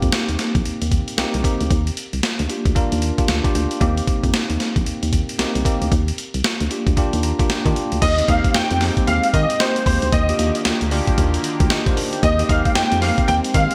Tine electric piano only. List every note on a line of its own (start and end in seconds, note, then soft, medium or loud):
0.00 0.36 A#3 medium
0.00 0.36 C4 medium
0.00 0.36 D#4 medium
0.00 0.36 G4 loud
1.17 1.38 A#3 medium
1.17 1.38 C4 medium
1.17 1.38 D#4 medium
1.17 1.39 G4 loud
1.44 1.70 A#3 medium
1.44 1.70 C4 medium
1.44 1.71 D#4 medium
1.44 1.71 G4 medium
2.49 2.70 A#3 medium
2.49 2.70 D4 medium
2.49 2.70 F4 medium
2.49 2.70 G4 medium
2.75 3.04 A#3 loud
2.75 3.04 D4 medium
2.75 3.04 F4 medium
2.75 3.04 A#4 loud
3.17 3.35 A#3 medium
3.17 3.35 D4 medium
3.17 3.35 F4 medium
3.17 3.35 G4 medium
3.28 3.53 F5 medium
3.44 3.72 A#3 medium
3.44 3.72 D4 medium
3.44 3.72 F4 medium
3.44 3.72 G4 loud
3.55 3.79 G5 medium
3.80 4.56 A#3 loud
3.80 4.57 C4 medium
3.80 4.57 D#4 medium
3.80 4.57 G4 loud
5.38 5.59 A#3 medium
5.38 5.59 C4 medium
5.38 5.59 D#4 medium
5.38 5.60 G4 loud
5.65 5.91 A#3 medium
5.65 5.92 C4 medium
5.65 5.92 D#4 medium
5.65 5.92 G4 loud
6.70 6.91 A#3 medium
6.70 6.91 D4 medium
6.70 6.91 F4 medium
6.70 6.91 G4 medium
6.97 7.25 A#3 loud
6.97 7.25 D4 medium
6.97 7.25 F4 medium
6.97 7.26 G4 loud
7.24 7.48 A#5 medium
7.39 7.56 A#3 medium
7.39 7.56 D4 medium
7.39 7.56 F4 medium
7.39 7.57 G4 loud
7.50 7.99 G5 medium
7.65 7.93 A#3 medium
7.65 7.93 D4 medium
7.65 7.93 F4 medium
7.65 7.94 G4 loud
8.18 8.25 A#3 medium
8.18 8.25 C4 medium
8.18 8.26 D#4 medium
8.18 8.26 G4 medium
8.28 8.68 A#3 medium
8.28 8.68 C4 medium
8.28 8.69 D#4 medium
8.28 8.69 G4 medium
8.81 9.38 A#3 medium
8.81 9.38 C4 medium
8.81 9.38 D#4 medium
8.81 9.38 G4 medium
9.60 10.08 A#3 medium
9.60 10.08 C4 medium
9.60 10.08 D#4 medium
9.60 10.08 G4 medium
10.29 10.36 A#3 medium
10.29 10.36 D4 medium
10.29 10.36 F4 medium
10.29 10.36 G4 medium
10.39 10.79 A#3 medium
10.39 10.79 D4 medium
10.39 10.79 F4 medium
10.39 10.47 F#4 medium
10.46 10.82 G4 medium
10.91 11.48 A#3 loud
10.91 11.48 D4 medium
10.91 11.48 F4 medium
10.91 11.49 G4 loud
11.71 11.86 G4 medium
11.71 11.86 D#5 medium
11.87 11.97 D#4 medium
11.87 11.96 C5 medium
11.97 12.12 D4 medium
11.97 12.12 A#4 medium
12.13 12.37 A#3 medium
12.13 12.38 G4 medium
12.39 12.46 A#3 medium
12.39 12.46 C4 medium
12.39 12.47 D#4 medium
12.39 12.47 G4 medium
12.49 12.89 A#3 medium
12.49 12.89 C4 medium
12.49 12.90 D#4 medium
12.49 12.90 G4 medium
13.02 13.59 A#3 medium
13.02 13.59 C4 medium
13.02 13.59 D#4 medium
13.02 13.59 G4 medium